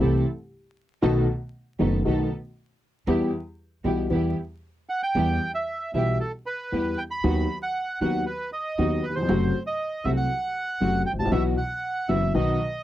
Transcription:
0.00 upright piano C2 C3 E3 A3 C4 G4, upright bass C2, string section C4 E4 A4
1.02 upright piano B1 B2 D#3 A3 B3 F#4, upright bass B1, string section B3 D#4 A4
1.79 upright bass F#1, upright piano F#1 F#2 D#3 A3 B3 F#4, string section B3 D#4 A4
2.05 upright piano B1 B2 D#3 A3 B3 F#4, upright bass B1, string section B3 D#4 A4
3.07 upright bass E2, upright piano E2 E3 G3 B3 G4, string section B3 E4 G4
3.84 upright bass B1, upright piano B1 B2 E3 G3 B3 G4, string section B3 E4 G4
4.10 upright bass E2, upright piano E2 E3 G3 B3 G4, string section B3 E4 G4
4.89 bandoneon F#5
5.03 bandoneon G5
5.15 upright bass E2, upright piano E2 E3 G3 B3 G4, string section B3 E4 G4
5.54 bandoneon E5
5.94 upright bass B1, upright piano B1 B2 E3 G3 B3 G4, string section B3 E4 G4, bandoneon E5
6.20 bandoneon A4
6.46 bandoneon B4
6.72 upright piano E2 E3 G3 B3 G4, upright bass E2, string section B3 E4 G4
6.98 bandoneon G5
7.11 bandoneon B5
7.24 upright bass D#2, upright piano D#2 D#3 F#3 B3 F#4, string section B3 D#4 F#4
7.62 bandoneon F#5
8.01 upright bass D#2, upright piano D#2 D#3 F#3 B3 F#4, string section B3 D#4 F#4, bandoneon F#5
8.26 bandoneon B4
8.53 bandoneon D#5
8.78 upright bass D#2, upright piano D#2 D#3 F#3 B3 F#4, string section B3 D#4 F#4
9.03 bandoneon B4
9.09 upright piano D#2
9.15 upright piano E2, bandoneon C5
9.23 upright piano F2
9.29 upright bass F#1, upright piano F#2 C3 F#3 A3 F#4, string section A3 C4 F#4
9.67 bandoneon D#5
10.04 upright bass C2, upright piano C2 C3 F#3 A3 F#4, string section A3 C4 F#4, bandoneon E5
10.17 bandoneon F#5
10.81 upright bass F#1, upright piano F#2 C3 F#3 A3 F#4, string section A3 C4 F#4
11.06 bandoneon G5
11.13 upright bass G#1, upright piano G#1
11.19 upright bass A1, upright piano A1, bandoneon A5
11.25 upright piano A#1, upright bass A#1
11.31 upright bass B1, upright piano B1 B2 E3 F#3 B3 F#4, string section B3 E4 F#4, bandoneon E5
11.57 bandoneon F#5
12.09 upright bass F#1, upright piano F#1 F#2 E3 F#3 B3 F#4, string section B3 E4 F#4, bandoneon E5
12.34 upright bass B1, upright piano B1 B2 D#3 F#3 B3 F#4, string section B3 D#4 F#4, bandoneon D#5

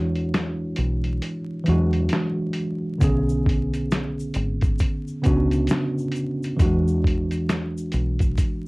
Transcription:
Already playing: fingered electric bass E2, tine electric piano E3 G#3 D4 E4 F#4 C#5
0.15 closed hi-hat
0.34 snare, closed hi-hat
0.76 fingered electric bass B1, closed hi-hat
1.04 closed hi-hat
1.22 closed hi-hat
1.63 tine electric piano E3 F#3 D4, closed hi-hat
1.68 fingered electric bass E2, tine electric piano G#3 F#4
1.93 closed hi-hat
2.09 closed hi-hat
2.13 snare
2.53 closed hi-hat
2.98 fingered electric bass B1, tine electric piano C#3 B3 C#4, kick, closed hi-hat, shaker
3.04 tine electric piano D3 G#4
3.29 shaker
3.46 kick, closed hi-hat
3.74 closed hi-hat, shaker
3.91 snare, closed hi-hat, shaker
4.20 shaker
4.34 fingered electric bass G#1, closed hi-hat, shaker
4.61 kick, closed hi-hat, shaker
4.79 kick, closed hi-hat, shaker
5.07 shaker
5.22 tine electric piano C#3 B3 C#4, closed hi-hat, shaker
5.26 fingered electric bass C#2, tine electric piano D4 F#4, kick
5.51 closed hi-hat, shaker
5.67 closed hi-hat, shaker
5.71 snare
5.98 shaker
6.12 closed hi-hat, shaker
6.43 closed hi-hat, shaker
6.57 fingered electric bass E2, tine electric piano E3 F#3 D4, kick, closed hi-hat, shaker
6.62 tine electric piano G#3 F#4
6.88 shaker
7.04 kick, closed hi-hat
7.31 closed hi-hat, shaker
7.49 snare, closed hi-hat, shaker
7.78 shaker
7.92 fingered electric bass B1, closed hi-hat, shaker
8.19 kick, closed hi-hat, shaker
8.38 kick, closed hi-hat, shaker

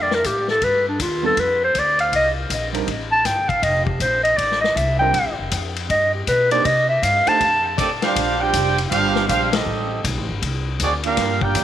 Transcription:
Already playing: upright bass F2, grand piano G3 A#3 D4 F4 A4
0.02 clarinet D5
0.11 clarinet A#4, snare
0.24 upright bass A2, clarinet G4, kick, hi-hat pedal, ride
0.48 clarinet A4, snare
0.62 upright bass G2, clarinet B4, kick, ride
0.88 clarinet D4
0.99 upright bass D#2, clarinet F4, kick, hi-hat pedal, ride
1.23 grand piano G3 B3 D4 F4 A4, clarinet A4
1.37 upright bass F2, clarinet B4, kick, ride
1.64 clarinet C5
1.75 upright bass D2, clarinet D5, kick, hi-hat pedal, ride
1.99 clarinet F5, ride
2.12 upright bass C2, clarinet D#5, kick, ride
2.50 upright bass A#1, kick, hi-hat pedal, ride
2.72 grand piano G3 C4 D4 D#4 A#4, ride
2.87 upright bass A1, kick, ride
3.12 clarinet A5
3.25 upright bass G1, clarinet G5, kick, snare, hi-hat pedal, ride
3.49 clarinet F5, kick, ride
3.62 upright bass F1, clarinet D#5, kick, ride
3.85 clarinet G4, kick
4.00 upright bass A#1, clarinet C5, kick, hi-hat pedal, ride
4.23 clarinet D#5, ride
4.37 upright bass A1, clarinet D5, kick, ride
4.51 snare
4.61 clarinet D#5, snare
4.76 upright bass C2, clarinet E5, kick, hi-hat pedal, ride
4.99 grand piano G3 C4 D4 F4 A#4, clarinet G5
5.13 upright bass A#1, kick, ride
5.26 upright bass G1
5.39 upright bass F1
5.51 upright bass F2, kick, hi-hat pedal, ride
5.76 ride
5.89 upright bass G2, clarinet D#5, kick, ride
6.14 clarinet G4
6.27 upright bass B2, clarinet B4, kick, hi-hat pedal, ride
6.51 grand piano A#3 D4 D#4 G4 C5, clarinet D5, ride
6.65 upright bass C3, clarinet D#5, kick, ride
6.89 clarinet E5
7.02 upright bass G2, clarinet F5, kick, hi-hat pedal, ride
7.27 grand piano A3 D4 D#4 G4 C5, clarinet A5, muted upright bass stroke, ride
7.40 upright bass F2, kick, ride
7.77 trombone section D#3 A3 D4, trumpet section C4 G4 A4 D5, kick, hi-hat pedal, crash, ride
8.02 trombone section G3 D4 F4, trumpet section D4 G4 C5 F5, snare, ride
8.16 upright bass A#1, kick, ride
8.38 trombone section G3 D4 G4, trumpet section F4 C5 D5 G5
8.53 upright bass F1, kick, hi-hat pedal, ride
8.78 ride
8.88 upright bass G1, trombone section G3 D4 F4, trumpet section D4 G4 C5 F5, kick, ride
9.16 snare
9.27 upright bass A#1, trombone section G3 D4 F4, trumpet section D4 G4 C5 F5, kick, hi-hat pedal, ride
9.51 trombone section G3 C4 D#4, trumpet section C4 G4 A4 D#5, snare, ride
9.66 upright bass A1
10.04 upright bass B1, kick, hi-hat pedal, ride
10.17 upright bass A1
10.29 upright bass G1
10.42 upright bass C2, kick, ride
10.80 upright bass D2, trombone section D#3 F#3 D4, trumpet section C4 F#4 G#4 D5, kick, hi-hat pedal, ride
11.03 trombone section A#3 D4 F4, trumpet section D4 G4 A#4 F5, ride
11.17 upright bass G2, kick, snare, ride
11.41 trombone section A#3 D4 G4, trumpet section F4 A#4 D5 G5, kick
11.55 upright bass F2, kick, hi-hat pedal, ride

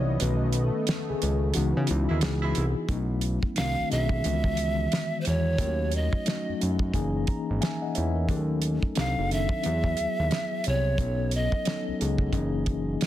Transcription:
Already playing: analog synth bass C2, tine electric piano E3 F#3 B3 D#4 C#5 D5 D#5 E5, analog synth pad E3 B3 C#4 F#4 D#5
0.19 analog synth bass B1, tine electric piano D#3 A3 C#4 B4, analog synth pad A3, closed hi-hat
0.53 closed hi-hat
0.64 tine electric piano A4
0.87 snare, closed hi-hat
1.10 analog synth bass C#2, tine electric piano G#4
1.22 analog synth bass C#2, closed hi-hat
1.53 analog synth bass C#2, analog synth pad C#3 E3, tine electric piano E3 B3 D#4 F#4, closed hi-hat
1.77 analog synth bass C#3
1.87 analog synth bass C#2, tine electric piano E4, closed hi-hat
2.08 analog synth bass D#2, horn section B2 E3 G#3 E4
2.21 analog synth bass C#2, tine electric piano G#4, snare, closed hi-hat
2.42 horn section B2 E3 G#3 E4
2.55 analog synth bass C2, closed hi-hat
2.88 analog synth bass B1, tine electric piano F#3 A3 B3 C#4 D#4, kick, closed hi-hat
2.97 tine electric piano E4
3.21 closed hi-hat
3.43 kick
3.55 tine electric piano D#3 A3 C4 D4 F#4, pan flute F5, snare, closed hi-hat
3.59 analog synth bass C2
3.79 analog synth bass B1
3.88 analog synth bass B1, tine electric piano D#3 A3 C4 D4 G#4, pan flute E5, closed hi-hat
4.09 kick
4.22 analog synth bass C#2, tine electric piano D#3 E3 G#3 B3 E4, closed hi-hat
4.31 tine electric piano F#4
4.44 kick
4.57 closed hi-hat
4.92 snare, closed hi-hat
5.21 pan flute C5, closed hi-hat
5.27 analog synth bass E2, pan flute C#5
5.58 analog synth bass D#2, tine electric piano F#3 A3 C#4 D#4 F4, kick, closed hi-hat
5.67 tine electric piano F#4
5.91 closed hi-hat
5.96 pan flute D#5
6.13 kick
6.25 tine electric piano F#3 A3 C#4 D#4 F#4, snare, closed hi-hat
6.49 analog synth bass F#2
6.60 analog synth bass F#2, tine electric piano F#3 A3 C#4 D#4 F#4, closed hi-hat
6.79 kick
6.93 analog synth bass F#1, tine electric piano E3 A#3 C#4 D#4 G#4, kick, closed hi-hat
7.27 tine electric piano A#5, kick, closed hi-hat
7.50 analog synth bass G#1
7.61 tine electric piano E5 G#5, snare, closed hi-hat
7.82 tine electric piano D#5 F#5
7.95 analog synth bass E2, tine electric piano C#5 E5, closed hi-hat
8.15 tine electric piano A#4
8.27 analog synth bass D#2, tine electric piano F#3 A3 C#4 D#4 G#4, kick, closed hi-hat
8.36 tine electric piano A4
8.62 closed hi-hat
8.83 kick
8.95 analog synth bass C2, tine electric piano F#3 C4 D4 D#4 A4, pan flute F5, snare, closed hi-hat
9.18 analog synth bass F#1
9.30 tine electric piano D#3 F#3 C4 D4 A4, pan flute E5, closed hi-hat
9.49 kick
9.63 analog synth bass E2, tine electric piano F#3 B3 E4 G4, closed hi-hat
9.71 tine electric piano G#4
9.84 kick
9.97 analog synth bass D#2, closed hi-hat
10.19 analog synth bass D#2
10.31 snare, closed hi-hat
10.64 analog synth bass C2, pan flute C#5, closed hi-hat
10.98 analog synth bass B1, tine electric piano F#3 B3 C#4 D#4 A4, kick, closed hi-hat
11.31 pan flute D#5, closed hi-hat
11.52 kick
11.65 tine electric piano F#3 B3 C#4 D#4 A4, snare, closed hi-hat
11.88 analog synth bass C#2
11.99 analog synth bass C#2, tine electric piano F#3 B3 C#4 D#4 G#4, closed hi-hat
12.18 kick
12.32 analog synth bass F#1, tine electric piano E3 G#3 C#4 D#4 G#4, kick, closed hi-hat
12.39 tine electric piano A#3
12.66 kick, closed hi-hat
13.01 snare, closed hi-hat

